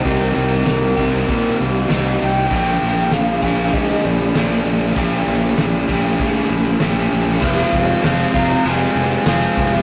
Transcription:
<<
  \new Staff \with { instrumentName = "Soft synth lead" } { \time 4/4 \key bes \mixolydian \tempo 4 = 98 bes'8 bes'2 r4 g''8~ | g''4 f''4 ees''8 d''4 d''8~ | d''2. r4 | r4. bes''8 aes''2 | }
  \new Staff \with { instrumentName = "Overdriven electric guitar" } { \time 4/4 \key bes \mixolydian <c g c' ees' g'>4. <c g c' ees' g'>4. <c g c' ees' g'>4 | <bes, d f bes d' aes'>4. <bes, d f bes d' aes'>4. <bes, d f bes d' aes'>4 | <bes, d f bes d' aes'>4. <bes, d f bes d' aes'>4. <bes, d f bes d' aes'>4 | <f aes c' f'>4 <f aes c' f'>8 <aes c' f'>8 <f aes c' f'>4 <f aes c' f'>4 | }
  \new Staff \with { instrumentName = "Fingered electric bass" } { \clef bass \time 4/4 \key bes \mixolydian c,8 c,8 c,8 c,8 bes,8 c,8 c,8 c,8 | bes,,8 bes,,8 bes,,8 bes,,8 aes,8 bes,,8 bes,,8 bes,,8 | bes,,8 bes,,8 bes,,8 bes,,8 aes,8 bes,,8 bes,,8 bes,,8 | f,,8 f,,8 f,,8 f,,8 f,,8 f,,8 f,,8 f,,8 | }
  \new DrumStaff \with { instrumentName = "Drums" } \drummode { \time 4/4 <hho bd>4 <hho sn>8 bd8 <hho bd>4 <hho sn>4 | <hho bd>4 <hho sn>8 bd8 <hho bd>4 <hho sn>4 | <hho bd>4 <hho sn>8 bd8 <hho bd>4 <hho sn>4 | <cymc bd>8 <cymc bd>8 <cymc sn>8 <cymc bd>8 cymc8 cymc8 <cymc sn>8 <cymc bd>8 | }
>>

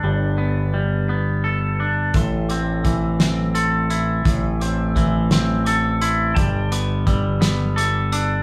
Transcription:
<<
  \new Staff \with { instrumentName = "Glockenspiel" } { \time 6/8 \key a \minor \tempo 4. = 57 r2. | r8 d'''8 e'''4 c'''8 e'''8~ | e'''8 d'''8 e'''4 d'''8 c'''8 | r8 d'''8 e'''4 d'''8 e'''8 | }
  \new Staff \with { instrumentName = "Pedal steel guitar" } { \time 6/8 \key a \minor << { r2. | <e'' c'''>2.~ | <e'' c'''>2. | <g'' a''>2. | } \\ { r2. | a'2.~ | a'2.~ | a'2. | } >> }
  \new Staff \with { instrumentName = "Clean electric guitar" } { \time 6/8 \key a \minor <g b d' a'>8 b8 g8 b8 a'8 d'8 | a,8 c'8 e8 c'8 a'8 e'8 | a,8 c'8 e8 c'8 a'8 e'8 | g8 b8 g8 b8 a'8 d'8 | }
  \new Staff \with { instrumentName = "Fingered electric bass" } { \clef bass \time 6/8 \key a \minor g,,2. | a,,2. | a,,2. | g,,2. | }
  \new DrumStaff \with { instrumentName = "Drums" } \drummode { \time 6/8 r4. r4. | <hh bd>8 hh8 <hh bd>8 <hh sn>8 hh8 hh8 | <hh bd>8 hh8 <hh bd>8 <hh sn>8 hh8 hh8 | <hh bd>8 hh8 <hh bd>8 <hh sn>8 hh8 hh8 | }
>>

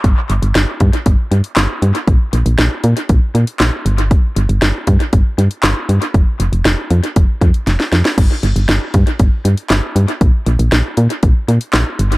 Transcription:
<<
  \new Staff \with { instrumentName = "FM bass" } { \clef bass \time 4/4 \key g \minor \tempo 4 = 118 g,,16 r16 g,,16 g,,16 g,,16 r16 g,16 r16 g,,16 r16 g,16 r16 g,,16 r16 g,16 r16 | bes,,16 r16 bes,,16 bes,,16 bes,,16 r16 bes,16 r16 bes,,16 r16 bes,16 r16 bes,,16 r16 g,,8~ | g,,16 r16 g,,16 g,,16 g,,16 r16 g,16 r16 g,,16 r16 g,16 r16 g,,16 r16 g,16 r16 | f,,16 r16 f,,16 f,,16 f,,16 r16 f,16 r16 f,,16 r16 f,16 r16 f,,16 r16 f,16 r16 |
g,,16 r16 g,,16 g,,16 g,,16 r16 g,16 r16 g,,16 r16 g,16 r16 g,,16 r16 g,16 r16 | bes,,16 r16 bes,,16 bes,,16 bes,,16 r16 bes,16 r16 bes,,16 r16 bes,16 r16 bes,,16 r16 g,,8 | }
  \new DrumStaff \with { instrumentName = "Drums" } \drummode { \time 4/4 <hh bd>8 hh16 hh16 <hh sn>8 <hh bd>16 hh16 <hh bd>8 hh16 hh16 <hc hh sn>8 hh16 hh16 | <hh bd>8 hh16 hh16 <hh sn>8 hh16 hh16 <hh bd>8 hh16 hh16 <hc hh sn>8 hh16 hh16 | <hh bd>8 hh16 hh16 <hh sn>8 <hh bd>16 hh16 <hh bd>8 hh16 hh16 <hc hh sn>8 hh16 hh16 | <hh bd>8 hh16 hh16 <hh sn>8 hh16 hh16 <hh bd>8 <hh bd>16 hh16 <hh sn>16 sn16 <hh sn>16 <hh sn>16 |
<cymc hh bd>8 hh16 hh16 <hh sn>8 <hh bd>16 hh16 <hh bd>8 hh16 hh16 <hc hh sn>8 hh16 hh16 | <hh bd>8 hh16 hh16 <hh sn>8 hh16 hh16 <hh bd>8 hh16 hh16 <hc hh sn>8 hh16 hh16 | }
>>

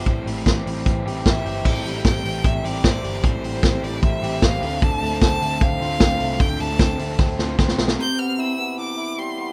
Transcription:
<<
  \new Staff \with { instrumentName = "Violin" } { \time 4/4 \key a \minor \tempo 4 = 151 c''8 r2 r8 e''4 | g''4 g''4 e''8 d''4. | c''4. d''8 e''4 f''4 | a''4 a''4 f''2 |
g''8 a''4. r2 | g'''8 f'''8 e'''4 d'''4 c'''4 | }
  \new Staff \with { instrumentName = "Clean electric guitar" } { \time 4/4 \key a \minor a,8 g8 f'16 g'16 c'8 e8 g'8 c'8 g'8 | a,8 g8 c'8 g8 c'8 g'8 c'8 g8 | a,8 g8 c'8 g8 c'8 g'8 c'8 d8 | d8 a8 c'8 a8 c'8 f'8 c'8 a8 |
d8 a8 c'8 a8 c'8 f'8 c'8 a8 | c8 b8 e'8 b8 e8 e'8 g8 b8 | }
  \new Staff \with { instrumentName = "Overdriven electric guitar" } { \time 4/4 \key a \minor <e g c' e'>8 <a, e g c' e'>4 <a, e g c' e'>8 <e g c' e'>8 <a, e g c' e'>8. <a, e g c' e'>8. | <a, e g c' e'>8. <g c' e'>8. <e g c' e'>4 <e g c' e'>8 <e g c' e'>4 | <a, e g c' e'>8. <g c' e'>8. <e g c' e'>4 <e g c' e'>8 <e g c' e'>8 <d a c' f'>8~ | <d a c' f'>8. <a c' f'>8. <d a c' f'>4 <d a c' f'>8 <d a c' f'>4 |
<d a c' f'>8. <a c' f'>8. <d a c' f'>4 <d a c' f'>8 <d a c' f'>4 | r1 | }
  \new Staff \with { instrumentName = "Picked electric bass" } { \clef bass \time 4/4 \key a \minor a,,8 a,,8 a,,8 a,,8 a,,8 a,,8 a,,8 g,,8 | a,,8 a,,8 a,,8 a,,8 a,,8 a,,8 a,,8 g,,8 | a,,8 a,,8 a,,8 a,,8 a,,8 a,,8 a,,8 d,8~ | d,8 d,8 d,8 d,8 d,8 d,8 d,8 c,8 |
d,8 d,8 d,8 d,8 d,8 d,8 d,8 b,,8 | r1 | }
  \new DrumStaff \with { instrumentName = "Drums" } \drummode { \time 4/4 <hh bd>8 hho8 <hh bd sn>8 hho8 <hh bd>8 hho8 <hh bd sn>8 hho8 | <cymc bd>8 hho8 <hh bd sn>8 hho8 <hh bd>8 hho8 <hh bd sn>8 hho8 | <hh bd>8 hho8 <hh bd sn>8 hho8 <hh bd>8 hho8 <hh bd sn>8 hho8 | <hh bd>8 hho8 <hh bd sn>8 hho8 <hh bd>8 hho8 <hh bd sn>8 hho8 |
<hh bd>8 hho8 <hh bd sn>8 hho8 <bd sn>8 sn8 <bd sn>16 sn16 sn16 sn16 | r4 r4 r4 r4 | }
>>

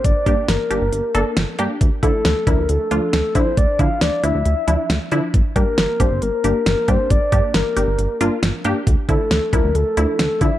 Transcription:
<<
  \new Staff \with { instrumentName = "Soft synth lead" } { \time 4/4 \key g \dorian \tempo 4 = 136 d''4 bes'2 r4 | r8 a'4 bes'8 a'4 a'8 c''8 | d''8 f''8 d''8 e''4. r4 | r8 bes'4 c''8 bes'4 bes'8 c''8 |
d''4 bes'2 r4 | r8 a'4 bes'8 a'4 a'8 e''8 | }
  \new Staff \with { instrumentName = "Synth pluck" } { \time 4/4 \key g \dorian r8 <bes d' g'>8 r8 <bes d' g'>8 r8 <bes d' a'>8 r8 <bes d' g'>8 | r8 <f d' e'>8 r8 <f d' e'>8 r8 <f d' f'>8 r8 <f d' e'>8 | r8 <f d' e'>8 r8 <f d' e'>8 r8 <f d' e'>8 r8 <f d' e'>8 | r8 <bes d' g'>8 r8 <bes d' g'>8 r8 <bes d' g'>8 r8 <bes d' g'>8 |
r8 <bes d' g'>8 r8 <bes d' g'>8 r8 <bes d' f'>8 r8 <bes d' g'>8 | r8 <f d' e'>8 r8 <f d' e'>8 r8 <f d' e'>8 r8 <f d' e'>8 | }
  \new Staff \with { instrumentName = "Analog synth bass" } { \clef bass \time 4/4 \key g \dorian g,,16 r16 g,16 r16 g,,16 r16 g,,16 g,,16 g,,16 r16 g,,16 r16 g,,16 r16 g,16 r16 | d,16 r16 d16 r16 d,16 r16 d,16 d,16 d,16 r16 d,16 r16 d,16 r16 d16 r16 | d,16 r16 d16 r16 d,16 r16 d,16 d,16 d,16 r16 d,16 r16 d,16 r16 d16 r16 | g,,16 r16 g,16 r16 g,,16 r16 g,,16 g,,16 g,,16 r16 g,,16 r16 g,,16 r16 g,16 r16 |
g,,16 r16 g,16 r16 g,,16 r16 g,,16 g,,16 g,,16 r16 g,,16 r16 g,,16 r16 g,16 r16 | d,16 r16 d16 r16 d,16 r16 d,16 d,16 d,16 r16 d,16 r16 d,16 r16 d16 r16 | }
  \new DrumStaff \with { instrumentName = "Drums" } \drummode { \time 4/4 <hh bd>8 <hh bd>8 <hh sn>8 hh8 hh8 hh8 <hh sn>8 hh8 | <hh bd>8 <hh bd>8 <hh sn>8 <hh bd>8 hh8 hh8 <hh sn>8 <hh bd>8 | <hh bd>8 <hh bd>8 <hh sn>8 hh8 hh8 hh8 <hh sn>8 hh8 | <hh bd>8 <hh bd>8 <hh sn>8 <hh bd>8 hh8 hh8 <hh sn>8 <hh bd>8 |
<hh bd>8 <hh bd>8 <hh sn>8 hh8 hh8 hh8 <hh sn>8 hh8 | <hh bd>8 <hh bd>8 <hh sn>8 <hh bd>8 hh8 hh8 <hh sn>8 <hh bd>8 | }
>>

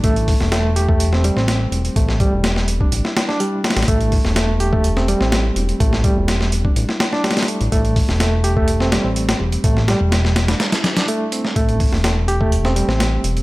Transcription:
<<
  \new Staff \with { instrumentName = "Reed electric piano" } { \time 4/4 \key c \major \tempo 4 = 125 a16 r8. a8 g'16 a8 c'16 g16 c'16 r4 | a8 g16 r4 d'16 r16 e'8 d'16 g16 r16 a16 r16 | a16 r8. a8 g'16 a8 c'16 g16 c'16 r4 | a8 g16 r4 d'16 r16 e'8 d'16 g16 r16 a16 r16 |
a16 r8. a8 g'16 a8 c'16 g16 c'16 r4 | a8 g16 r4 d'16 r16 e'16 r16 d'16 a16 r16 c'16 r16 | a16 r8. a8 g'16 a8 c'16 g16 c'16 r4 | }
  \new Staff \with { instrumentName = "Analog synth bass" } { \clef bass \time 4/4 \key c \major a,,8. e,,2 a,,8. e,,16 r16 | a,,8. e,,4~ e,,16 a,,16 r4. a,,16 | a,,8. e,,2 a,,8. e,,16 r16 | a,,8. e,,4~ e,,16 a,,16 r4. a,,16 |
a,,8. e,,2 a,,8. e,,16 r16 | a,,8. e,,4~ e,,16 r2 | a,,8. e,,2 a,,8. e,,16 r16 | }
  \new DrumStaff \with { instrumentName = "Drums" } \drummode { \time 4/4 <hh bd>16 hh16 <hho bd>16 sn16 <hh sn>8 hh16 bd16 hh16 sn16 hh16 sn16 <hh sn>8 hh16 hh16 | <hh bd>16 sn16 <hh bd>8 <hh sn>16 sn16 hh16 bd16 hh16 sn16 <hh sn>16 sn16 hh8 <hh sn>32 <hh sn>32 <hh sn>32 <hh sn>32 | <hh bd>16 hh16 <hho bd>16 sn16 <hh sn>8 hh16 bd16 hh16 sn16 hh16 sn16 <hh sn>8 hh16 hh16 | <hh bd>16 sn16 <hh bd>8 <hh sn>16 sn16 hh16 bd16 hh16 sn16 <hh sn>16 sn16 <hh sn>32 <hh sn>32 <hh sn>32 <hh sn>32 hh16 hh16 |
<hh bd>16 hh16 <hho bd>16 sn16 <hh sn>8 hh16 bd16 hh16 sn16 <hh sn>8 hh16 <hh sn>8 hh16 | <hh bd>16 sn16 <hh sn>8 <hh sn>16 sn16 <hh sn>16 <hh sn>16 <hh sn>16 <hh sn>16 <hh sn>16 <hh sn>16 hh8 hh16 sn16 | <hh bd>16 hh16 <hho bd>16 sn16 <hh sn>8 hh16 bd16 hh16 sn16 hh16 sn16 <hh sn>8 hh16 hh16 | }
>>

